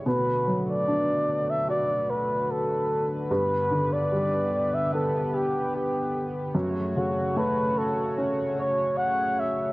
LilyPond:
<<
  \new Staff \with { instrumentName = "Flugelhorn" } { \time 4/4 \key b \minor \tempo 4 = 74 b'8. d''4 e''16 d''8 b'8 a'8. r16 | b'8. d''4 e''16 a'8 g'8 g'8. r16 | r8 fis'8 b'8 a'8 r8 cis''8 fis''8 e''8 | }
  \new Staff \with { instrumentName = "Analog synth pad" } { \time 4/4 \key b \minor << { <d b'>1~ | <d b'>1 | <cis cis''>1 | } \\ { <a fis'>1 | <b g'>1 | <a fis'>1 | } >> }
  \new Staff \with { instrumentName = "Upright piano" } { \clef bass \time 4/4 \key b \minor b,8 fis8 d'4 fis'2 | g,8 d8 g4 b2 | fis,8 cis8 a4 cis'2 | }
>>